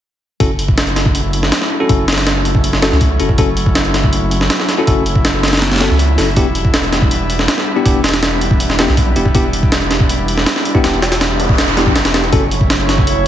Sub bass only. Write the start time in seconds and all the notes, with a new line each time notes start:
0.40 F#1
1.89 F#1
2.92 C#2
3.20 F#1
3.38 F#1
4.87 F#1
5.91 C#2
6.18 F#1
6.37 E1
7.86 E1
8.89 B1
9.16 E1
9.35 E1
10.84 E1
11.87 B1
11.95 E1
12.33 F#1